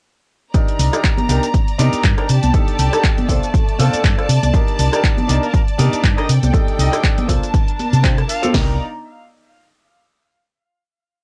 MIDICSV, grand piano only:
0, 0, Header, 1, 2, 480
1, 0, Start_track
1, 0, Tempo, 500000
1, 518, Time_signature, 4, 2, 24, 8
1, 10788, End_track
2, 0, Start_track
2, 0, Title_t, "Grand piano"
2, 0, Program_c, 0, 0
2, 519, Note_on_c, 0, 62, 80
2, 519, Note_on_c, 0, 63, 72
2, 521, Note_on_c, 0, 67, 72
2, 525, Note_on_c, 0, 70, 89
2, 860, Note_off_c, 0, 62, 0
2, 860, Note_off_c, 0, 63, 0
2, 861, Note_off_c, 0, 67, 0
2, 864, Note_off_c, 0, 70, 0
2, 890, Note_on_c, 0, 62, 77
2, 893, Note_on_c, 0, 63, 72
2, 894, Note_on_c, 0, 67, 69
2, 898, Note_on_c, 0, 70, 85
2, 1212, Note_off_c, 0, 62, 0
2, 1214, Note_off_c, 0, 63, 0
2, 1214, Note_off_c, 0, 67, 0
2, 1216, Note_off_c, 0, 70, 0
2, 1238, Note_on_c, 0, 62, 78
2, 1239, Note_on_c, 0, 63, 71
2, 1244, Note_on_c, 0, 67, 75
2, 1247, Note_on_c, 0, 70, 87
2, 1371, Note_off_c, 0, 62, 0
2, 1371, Note_off_c, 0, 63, 0
2, 1374, Note_off_c, 0, 67, 0
2, 1375, Note_off_c, 0, 70, 0
2, 1714, Note_on_c, 0, 62, 99
2, 1715, Note_on_c, 0, 63, 90
2, 1718, Note_on_c, 0, 67, 90
2, 1722, Note_on_c, 0, 70, 111
2, 2058, Note_off_c, 0, 62, 0
2, 2058, Note_off_c, 0, 63, 0
2, 2060, Note_off_c, 0, 67, 0
2, 2062, Note_off_c, 0, 70, 0
2, 2088, Note_on_c, 0, 62, 88
2, 2092, Note_on_c, 0, 63, 80
2, 2095, Note_on_c, 0, 67, 84
2, 2095, Note_on_c, 0, 70, 98
2, 2156, Note_off_c, 0, 62, 0
2, 2158, Note_off_c, 0, 63, 0
2, 2160, Note_off_c, 0, 67, 0
2, 2160, Note_off_c, 0, 70, 0
2, 2435, Note_on_c, 0, 62, 81
2, 2438, Note_on_c, 0, 63, 71
2, 2440, Note_on_c, 0, 67, 73
2, 2443, Note_on_c, 0, 69, 91
2, 2778, Note_off_c, 0, 62, 0
2, 2779, Note_off_c, 0, 63, 0
2, 2781, Note_off_c, 0, 67, 0
2, 2782, Note_off_c, 0, 69, 0
2, 2808, Note_on_c, 0, 62, 76
2, 2810, Note_on_c, 0, 63, 71
2, 2814, Note_on_c, 0, 67, 73
2, 2817, Note_on_c, 0, 69, 84
2, 3131, Note_off_c, 0, 62, 0
2, 3132, Note_off_c, 0, 63, 0
2, 3134, Note_off_c, 0, 67, 0
2, 3136, Note_off_c, 0, 69, 0
2, 3155, Note_on_c, 0, 60, 80
2, 3157, Note_on_c, 0, 62, 75
2, 3160, Note_on_c, 0, 65, 71
2, 3163, Note_on_c, 0, 69, 88
2, 3290, Note_off_c, 0, 60, 0
2, 3290, Note_off_c, 0, 62, 0
2, 3292, Note_off_c, 0, 65, 0
2, 3293, Note_off_c, 0, 69, 0
2, 3633, Note_on_c, 0, 60, 94
2, 3635, Note_on_c, 0, 62, 90
2, 3638, Note_on_c, 0, 65, 86
2, 3640, Note_on_c, 0, 69, 105
2, 3977, Note_off_c, 0, 60, 0
2, 3978, Note_off_c, 0, 62, 0
2, 3980, Note_off_c, 0, 65, 0
2, 3981, Note_off_c, 0, 69, 0
2, 4005, Note_on_c, 0, 60, 88
2, 4009, Note_on_c, 0, 62, 81
2, 4009, Note_on_c, 0, 65, 79
2, 4011, Note_on_c, 0, 69, 97
2, 4075, Note_off_c, 0, 60, 0
2, 4077, Note_off_c, 0, 62, 0
2, 4077, Note_off_c, 0, 65, 0
2, 4078, Note_off_c, 0, 69, 0
2, 4350, Note_on_c, 0, 62, 81
2, 4353, Note_on_c, 0, 63, 74
2, 4356, Note_on_c, 0, 67, 73
2, 4356, Note_on_c, 0, 70, 89
2, 4696, Note_off_c, 0, 62, 0
2, 4697, Note_off_c, 0, 63, 0
2, 4699, Note_off_c, 0, 67, 0
2, 4699, Note_off_c, 0, 70, 0
2, 4723, Note_on_c, 0, 62, 79
2, 4724, Note_on_c, 0, 63, 71
2, 4727, Note_on_c, 0, 67, 70
2, 4731, Note_on_c, 0, 70, 88
2, 5049, Note_off_c, 0, 62, 0
2, 5049, Note_off_c, 0, 63, 0
2, 5051, Note_off_c, 0, 67, 0
2, 5053, Note_off_c, 0, 70, 0
2, 5067, Note_on_c, 0, 62, 82
2, 5070, Note_on_c, 0, 63, 72
2, 5072, Note_on_c, 0, 67, 74
2, 5076, Note_on_c, 0, 70, 89
2, 5205, Note_off_c, 0, 62, 0
2, 5207, Note_off_c, 0, 63, 0
2, 5208, Note_off_c, 0, 67, 0
2, 5210, Note_off_c, 0, 70, 0
2, 5549, Note_on_c, 0, 62, 96
2, 5553, Note_on_c, 0, 63, 89
2, 5554, Note_on_c, 0, 67, 94
2, 5558, Note_on_c, 0, 70, 107
2, 5895, Note_off_c, 0, 62, 0
2, 5897, Note_off_c, 0, 63, 0
2, 5898, Note_off_c, 0, 67, 0
2, 5900, Note_off_c, 0, 70, 0
2, 5921, Note_on_c, 0, 62, 89
2, 5923, Note_on_c, 0, 63, 83
2, 5926, Note_on_c, 0, 67, 82
2, 5928, Note_on_c, 0, 70, 98
2, 5993, Note_off_c, 0, 62, 0
2, 5994, Note_off_c, 0, 63, 0
2, 5995, Note_off_c, 0, 67, 0
2, 5996, Note_off_c, 0, 70, 0
2, 6269, Note_on_c, 0, 62, 80
2, 6273, Note_on_c, 0, 63, 78
2, 6274, Note_on_c, 0, 67, 72
2, 6276, Note_on_c, 0, 69, 85
2, 6615, Note_off_c, 0, 62, 0
2, 6617, Note_off_c, 0, 63, 0
2, 6618, Note_off_c, 0, 67, 0
2, 6619, Note_off_c, 0, 69, 0
2, 6643, Note_on_c, 0, 62, 80
2, 6646, Note_on_c, 0, 63, 73
2, 6650, Note_on_c, 0, 67, 69
2, 6652, Note_on_c, 0, 69, 88
2, 6969, Note_off_c, 0, 62, 0
2, 6970, Note_off_c, 0, 63, 0
2, 6972, Note_off_c, 0, 67, 0
2, 6973, Note_off_c, 0, 69, 0
2, 6988, Note_on_c, 0, 60, 81
2, 6994, Note_on_c, 0, 62, 73
2, 6994, Note_on_c, 0, 65, 74
2, 6997, Note_on_c, 0, 69, 88
2, 7126, Note_off_c, 0, 60, 0
2, 7129, Note_off_c, 0, 62, 0
2, 7129, Note_off_c, 0, 65, 0
2, 7131, Note_off_c, 0, 69, 0
2, 7710, Note_on_c, 0, 60, 96
2, 7712, Note_on_c, 0, 62, 90
2, 7715, Note_on_c, 0, 65, 88
2, 7718, Note_on_c, 0, 67, 109
2, 7797, Note_off_c, 0, 60, 0
2, 7798, Note_off_c, 0, 62, 0
2, 7800, Note_off_c, 0, 65, 0
2, 7801, Note_off_c, 0, 67, 0
2, 8085, Note_on_c, 0, 60, 92
2, 8087, Note_on_c, 0, 62, 85
2, 8089, Note_on_c, 0, 65, 88
2, 8091, Note_on_c, 0, 69, 104
2, 8170, Note_off_c, 0, 60, 0
2, 8171, Note_off_c, 0, 62, 0
2, 8172, Note_off_c, 0, 65, 0
2, 8172, Note_off_c, 0, 69, 0
2, 8189, Note_on_c, 0, 62, 84
2, 8205, Note_on_c, 0, 67, 81
2, 8377, Note_off_c, 0, 62, 0
2, 8386, Note_off_c, 0, 67, 0
2, 10788, End_track
0, 0, End_of_file